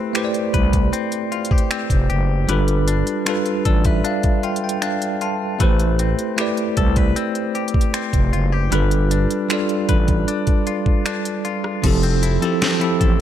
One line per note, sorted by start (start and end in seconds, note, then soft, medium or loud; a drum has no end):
0.00 0.13 A3 medium
0.00 2.48 A3 medium
0.00 0.92 C4 medium
0.00 0.15 E4 medium
0.00 0.16 G4 medium
0.00 0.17 B4 medium
0.00 0.53 B4 medium
0.00 0.18 C5 medium
0.13 1.14 A3 medium
0.13 1.15 E4 medium
0.13 1.31 G4 medium
0.13 1.15 G4 medium
0.13 1.16 B4 medium
0.13 finger snap loud
0.13 closed hi-hat medium
0.18 0.23 C5 medium
0.25 1.20 D5 medium
0.34 closed hi-hat soft
0.54 0.90 C2 medium
0.54 2.49 B4 medium
0.54 kick medium
0.54 closed hi-hat medium
0.73 kick medium
0.73 closed hi-hat medium
0.93 1.70 C4 medium
0.93 closed hi-hat medium
1.12 closed hi-hat soft
1.32 1.51 F4 medium
1.32 closed hi-hat soft
1.45 closed hi-hat soft
1.51 2.08 G4 medium
1.51 kick loud
1.58 closed hi-hat medium
1.71 2.56 C4 medium
1.71 finger snap loud
1.71 closed hi-hat medium
1.90 2.08 F1 medium
1.90 kick medium
1.90 closed hi-hat medium
2.10 2.46 F#1 medium
2.10 3.26 G4 medium
2.10 closed hi-hat soft
2.47 3.03 G1 loud
2.47 2.98 G3 medium
2.47 5.60 G3 medium
2.47 2.99 D4 medium
2.47 2.99 F4 medium
2.47 3.00 A4 medium
2.47 3.65 B4 medium
2.47 closed hi-hat medium
2.52 3.00 B4 medium
2.68 closed hi-hat soft
2.88 4.03 D4 medium
2.88 closed hi-hat medium
3.07 closed hi-hat soft
3.25 4.26 G3 medium
3.25 4.26 D4 medium
3.25 4.42 F4 medium
3.25 4.27 F4 medium
3.25 4.28 A4 medium
3.25 finger snap loud
3.25 closed hi-hat medium
3.30 4.28 B4 medium
3.46 closed hi-hat soft
3.65 4.01 A1 medium
3.65 3.85 A4 medium
3.65 3.84 D5 medium
3.65 kick medium
3.65 closed hi-hat medium
3.84 5.60 B4 soft
3.84 4.04 E5 medium
3.84 kick medium
3.84 closed hi-hat medium
4.04 4.81 D4 medium
4.04 4.41 F5 medium
4.04 closed hi-hat medium
4.23 kick medium
4.23 closed hi-hat soft
4.43 5.20 F4 medium
4.43 4.62 G5 medium
4.43 closed hi-hat soft
4.56 closed hi-hat medium
4.64 4.82 G5 medium
4.69 closed hi-hat medium
4.82 5.68 D4 medium
4.82 5.19 F5 medium
4.82 finger snap loud
4.82 closed hi-hat medium
5.02 closed hi-hat medium
5.21 5.68 F4 medium
5.21 5.58 A5 medium
5.21 closed hi-hat soft
5.59 6.15 A1 loud
5.59 6.09 A3 medium
5.59 8.72 A3 medium
5.59 6.10 E4 medium
5.59 6.11 G4 medium
5.59 6.77 B4 medium
5.59 6.11 B4 medium
5.59 kick loud
5.59 closed hi-hat medium
5.63 6.12 C5 medium
5.79 closed hi-hat soft
5.99 7.15 C4 medium
5.99 closed hi-hat medium
6.19 closed hi-hat soft
6.37 7.37 A3 medium
6.37 7.38 E4 medium
6.37 7.55 G4 medium
6.37 7.38 G4 medium
6.37 7.39 B4 medium
6.37 finger snap loud
6.37 closed hi-hat medium
6.41 7.40 D5 medium
6.57 closed hi-hat soft
6.77 7.13 C2 medium
6.77 6.97 A4 medium
6.77 kick medium
6.77 closed hi-hat medium
6.96 8.71 B4 medium
6.96 kick medium
6.96 closed hi-hat medium
7.16 7.93 C4 medium
7.16 closed hi-hat medium
7.35 closed hi-hat soft
7.55 8.32 G4 medium
7.55 closed hi-hat soft
7.68 closed hi-hat soft
7.74 kick medium
7.81 closed hi-hat medium
7.94 8.80 C4 medium
7.94 finger snap loud
7.94 closed hi-hat medium
8.13 8.31 F1 medium
8.13 kick medium
8.13 closed hi-hat medium
8.33 8.69 F#1 medium
8.33 8.52 F4 medium
8.33 closed hi-hat soft
8.52 8.80 G4 medium
8.71 9.27 G1 loud
8.71 9.21 G3 medium
8.71 11.84 G3 medium
8.71 9.22 D4 medium
8.71 9.22 F4 medium
8.71 9.23 A4 medium
8.71 9.88 B4 medium
8.71 closed hi-hat medium
8.75 9.23 B4 medium
8.91 closed hi-hat medium
9.11 10.27 D4 medium
9.11 closed hi-hat medium
9.31 closed hi-hat soft
9.48 10.49 G3 medium
9.48 10.50 D4 medium
9.48 10.67 F4 medium
9.48 10.50 F4 medium
9.48 10.51 A4 medium
9.48 finger snap loud
9.48 closed hi-hat medium
9.53 10.51 D5 medium
9.69 closed hi-hat soft
9.89 10.25 A1 medium
9.89 11.92 B4 medium
9.89 kick medium
9.89 closed hi-hat medium
10.08 kick medium
10.08 closed hi-hat medium
10.28 11.05 D4 medium
10.28 closed hi-hat medium
10.47 kick medium
10.47 closed hi-hat soft
10.67 11.44 F4 medium
10.67 closed hi-hat medium
10.86 kick medium
11.06 11.92 D4 medium
11.06 finger snap loud
11.06 closed hi-hat medium
11.25 closed hi-hat medium
11.45 12.22 F4 medium
11.45 closed hi-hat soft
11.64 cross-stick medium
11.82 12.38 F1 loud
11.82 12.20 F3 medium
11.82 13.21 F3 medium
11.82 12.21 C4 medium
11.82 12.22 E4 medium
11.82 12.22 G4 medium
11.82 kick loud
11.82 closed hi-hat medium
11.82 crash medium
11.87 12.23 A4 medium
12.03 12.61 C4 medium
12.03 closed hi-hat soft
12.23 12.81 E4 medium
12.23 closed hi-hat medium
12.40 12.66 F3 medium
12.40 12.67 C4 medium
12.40 12.67 E4 medium
12.40 12.68 G4 medium
12.40 13.00 A4 medium
12.40 closed hi-hat soft
12.45 12.69 A4 medium
12.62 13.21 C4 medium
12.62 snare loud
12.62 closed hi-hat medium
12.79 13.21 F3 medium
12.79 13.21 C4 medium
12.79 13.20 E4 medium
12.79 13.21 E4 medium
12.79 13.21 G4 medium
12.79 closed hi-hat soft
12.84 13.21 A4 medium
13.00 13.19 A1 medium
13.00 13.21 A4 medium
13.00 kick medium
13.00 closed hi-hat medium